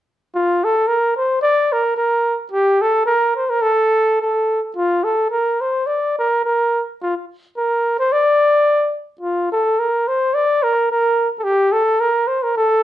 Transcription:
0.35 F4
0.64 A4
0.88 A#4
1.17 C5
1.42 D5
1.73 A#4
1.97 A#4
2.52 G4
2.82 A4
3.06 A#4
3.36 C5
3.50 A#4
3.62 A4
4.21 A4
4.76 F4
5.04 A4
5.31 A#4
5.61 C5
5.86 D5
6.19 A#4
6.45 A#4
7.02 F4
7.57 A#4
7.99 C5
8.12 D5
9.21 F4
9.52 A4
9.79 A#4
10.08 C5
10.34 D5
10.63 A#4
10.91 A#4
11.39 A4
11.44 G4
11.72 A4
12.01 A#4
12.28 C5
12.43 A#4
12.57 A4

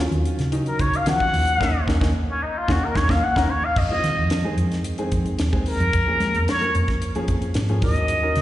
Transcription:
Already playing: D#2
0.00 D#3 F#3 C#4 F4
0.11 D#2, closed hi-hat
0.26 closed hi-hat
0.39 C#3, snare, closed hi-hat
0.52 D#3 F#3 C#4 D#4, closed hi-hat
0.66 A#4, closed hi-hat
0.79 C#2 C#5, kick, closed hi-hat
0.94 F5, muted fingered electric bass stroke, closed hi-hat
1.06 D#3 F3 F#3 C#4 F#5, snare, closed hi-hat
1.20 muted fingered electric bass stroke, kick
1.34 D#2, open hi-hat
1.47 closed hi-hat
1.60 D#2 A#3 C#4 D#4, kick, snare
1.87 D#2 A#3 C#4 D#4, kick, snare
2.00 D#2 A#3 C#4 D#4, kick, snare
2.31 C#4
2.43 D#4
2.58 F4
2.68 D#2 A#3 C#4 D#4 F#4, kick, snare
2.84 A#4
2.95 D#2 A#3 C#4 D#4 C#5, kick, snare
3.08 D#2 A#3 C#4 D#4 F5, kick, snare
3.24 F#5
3.36 D#2 A#3 C#4 D#4 A#4, kick, snare
3.50 C#5
3.64 F5
3.76 F2 D#5, kick, crash
3.89 D#3 G#3 C4 F4
4.04 D#3, snare, closed hi-hat
4.18 F2
4.30 snare, closed hi-hat
4.44 D#3 G#3 C4 G#4
4.57 F2, closed hi-hat
4.72 snare, closed hi-hat
4.84 closed hi-hat
4.98 D#3 G#3 C4 G#4, muted fingered electric bass stroke, closed hi-hat
5.12 F2, kick, closed hi-hat
5.26 closed hi-hat
5.39 D#2, snare, closed hi-hat
5.52 D#3 G#3 C4 G#4, kick
5.66 A#4, open hi-hat
5.80 F2, closed hi-hat
5.93 F2, kick, closed hi-hat
6.07 F3 A#3 C#4 G#4
6.20 G#3, snare, closed hi-hat
6.34 F2, closed hi-hat
6.48 C#5, snare, closed hi-hat
6.61 F3 A#3 C#4 A#4, closed hi-hat
6.75 F2, closed hi-hat
6.88 kick, snare, closed hi-hat
7.02 closed hi-hat
7.15 F3 A#3 C#4 G#4, muted fingered electric bass stroke, closed hi-hat
7.28 F2, kick, closed hi-hat
7.42 closed hi-hat
7.54 G#2, snare, closed hi-hat
7.69 F3 A#3 C#4 G#4, closed hi-hat
7.82 D#2 F#3 C#4 D#4 A#4 D#5, kick, open hi-hat
7.96 closed hi-hat
8.08 closed hi-hat
8.22 F#3 C#4 D#4 A#4
8.36 C#3, snare, closed hi-hat

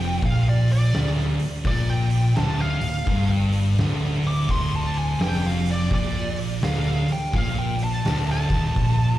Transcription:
Already playing: F1 F2 G5
0.22 A#1 A#2 F5, kick, open hi-hat
0.49 D5
0.68 open hi-hat
0.72 D5
0.94 D1 D2, snare, open hi-hat
1.17 snare
1.39 open hi-hat
1.64 A#1 A#2 D5, kick, open hi-hat
1.90 G5
2.10 open hi-hat
2.36 D1 D2 A5, snare, open hi-hat
2.61 F5
2.81 D1 D2, open hi-hat
3.07 G1 G2, kick, open hi-hat
3.52 open hi-hat
3.78 D1 D2, snare, open hi-hat
4.02 snare
4.23 D6, open hi-hat
4.49 D1 D2 C6, kick, open hi-hat
4.75 A5
4.94 open hi-hat
4.98 G#5
5.20 F1 F2 G5, snare, open hi-hat
5.46 F5
5.65 open hi-hat
5.71 D5
5.91 A#1 A#2 D5, kick, open hi-hat
6.36 open hi-hat
6.62 D1 D2 F5, snare, open hi-hat
7.08 open hi-hat
7.13 G5
7.33 A#1 A#2 F5, kick, open hi-hat
7.59 G5
7.79 open hi-hat
7.84 A5
8.05 D1 D2, snare, open hi-hat
8.31 A5
8.50 D#1 D#2, kick, open hi-hat
8.76 A#1 A#2, kick, open hi-hat

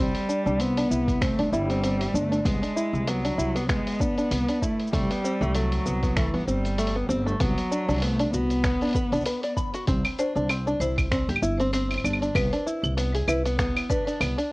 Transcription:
Already playing: C2 C4
0.00 G3
0.07 cabasa
0.11 open hi-hat, cabasa
0.16 cabasa
0.29 D4, cabasa
0.46 C2 D4, cabasa
0.60 B3 C4, open hi-hat, cabasa
0.77 D4, open hi-hat, cabasa
0.91 C2 E4, cabasa
1.08 kick, open hi-hat, cabasa
1.22 A3 C4, finger snap, kick, open hi-hat, cabasa
1.39 G1 D4, open hi-hat
1.52 G1 G3 E4, cabasa
1.70 C4, open hi-hat, cabasa
1.83 C4, open hi-hat, cabasa
2.01 open hi-hat, cabasa
2.14 G1 A3 D4, cabasa
2.32 D4, open hi-hat, cabasa
2.45 C2 G#3 B3, kick, open hi-hat, cabasa
2.62 D4, open hi-hat, cabasa
2.76 E4, cabasa
2.93 C2, cabasa
3.08 F#3 B3, open hi-hat, cabasa
3.25 D4, open hi-hat, cabasa
3.38 C2 E4, cabasa
3.56 B3, open hi-hat, cabasa
3.69 G#3 B3, finger snap, kick, open hi-hat, cabasa
3.87 open hi-hat, cabasa
3.91 cabasa
3.94 cabasa
3.98 D4, kick, cabasa
4.01 B3, cabasa
4.14 D4, open hi-hat, cabasa
4.18 cabasa
4.31 C2 B3, open hi-hat, cabasa
4.48 D4, open hi-hat, cabasa
4.62 A3 E4, kick, cabasa
4.79 open hi-hat
4.87 cabasa
4.93 C2 G3 A3, kick, open hi-hat, cabasa
5.10 B3, open hi-hat, cabasa
5.24 C4, cabasa
5.41 C2 A3, cabasa
5.54 F#3 A3, open hi-hat, cabasa
5.72 open hi-hat, cabasa
5.86 C2 B3, cabasa
6.03 B3, kick, open hi-hat, cabasa
6.17 E3 A3, finger snap, kick, open hi-hat, cabasa
6.34 G1 B3, open hi-hat, cabasa
6.47 G1 G3 C4, cabasa
6.65 open hi-hat, cabasa
6.78 A3, open hi-hat, cabasa
6.87 open hi-hat
6.96 B3
7.09 G1 C4, cabasa
7.26 A3, cabasa
7.40 C2 F#3 B3, kick, open hi-hat, cabasa
7.58 open hi-hat, cabasa
7.71 D4, cabasa
7.88 C2 D4, open hi-hat, cabasa
7.91 open hi-hat
7.92 open hi-hat
7.94 open hi-hat
7.96 open hi-hat
7.98 open hi-hat
8.00 open hi-hat
8.02 A3 B3, open hi-hat
8.19 D4, open hi-hat, cabasa
8.33 C2 B3 F#4, cabasa
8.50 open hi-hat, cabasa
8.64 B3, finger snap, kick, open hi-hat, cabasa
8.81 D4, open hi-hat, cabasa
8.83 open hi-hat
8.85 open hi-hat
8.87 open hi-hat
8.89 open hi-hat
8.91 open hi-hat
8.93 B4, kick, open hi-hat, cabasa
9.12 C2 D4, open hi-hat, cabasa
9.15 cabasa
9.20 cabasa
9.22 cabasa
9.24 B4, open hi-hat, cabasa
9.26 cabasa
9.43 D5, open hi-hat, cabasa
9.57 B5, kick, cabasa
9.74 F#4, open hi-hat, cabasa
9.87 C2 C4, kick, open hi-hat, cabasa
10.05 open hi-hat, cabasa, claves
10.19 D4 C5, cabasa
10.36 C2 D4, cabasa
10.49 C4, open hi-hat, cabasa, claves
10.67 D4, cabasa
10.80 C2 E4 C5, cabasa
10.98 kick, open hi-hat, cabasa, claves
11.11 C4, finger snap, kick, open hi-hat, cabasa
11.28 G1 G4, open hi-hat, cabasa
11.36 claves
11.42 G1 E4, cabasa
11.60 C4, open hi-hat, cabasa
11.73 C4 C5, open hi-hat, cabasa
11.91 open hi-hat, cabasa, claves
11.94 open hi-hat, claves
12.00 open hi-hat
12.04 G1 D4, open hi-hat, cabasa, claves
12.10 open hi-hat, claves
12.15 open hi-hat
12.22 D4, open hi-hat, cabasa
12.35 C2 B3 B4, kick, open hi-hat, cabasa, claves
12.53 D4, open hi-hat, cabasa
12.66 E4, cabasa
12.83 C2, cabasa, claves
12.97 B3, open hi-hat, cabasa
13.15 G#4, open hi-hat, cabasa
13.28 C2 E4 B4, cabasa, claves
13.45 B3, open hi-hat, cabasa
13.59 B3, finger snap, kick, open hi-hat, cabasa
13.77 open hi-hat, cabasa, claves
13.90 D4 B4, kick, cabasa
14.07 D4, open hi-hat, cabasa
14.21 C2 B3, open hi-hat, cabasa, claves
14.38 D4, open hi-hat, cabasa

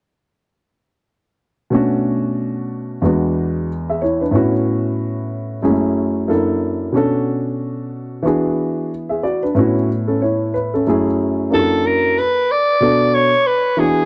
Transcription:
1.70 B2 A3 C#4 D4
1.75 F#4
3.02 E2 G#3 B3 D4 F#4
3.90 G#4 E5
4.02 E4 C#5
4.21 D4 B4
4.31 A2 B3 C#4 E4
4.36 F#4
5.62 F#2 G#3 C#4 E4 G#4
5.69 A3
6.28 F#2 A#3 D4 E4 A4
6.92 B2 C#4 D4 F#4
6.97 A4
8.23 E3 B3 D4 F#4
8.27 G#4
9.09 G#4 E5
9.23 F#4 D5
9.43 D4 B4
9.55 A2 B3 C#4 E4
9.59 F#4
10.08 C#4 A4
10.22 E4 C#5
10.54 B4
10.74 C#4 A4
10.87 F#2 A3 C#4 E4 G#4
11.50 F#2 A#3 D4 E4 G4
11.54 A4
11.59 F#4
11.87 A#4
12.19 B4
12.51 D5
12.80 B2 B3 D4 F#4 A4
13.15 C#5
13.47 B4
13.77 E3 B3 D4 F#4 G#4

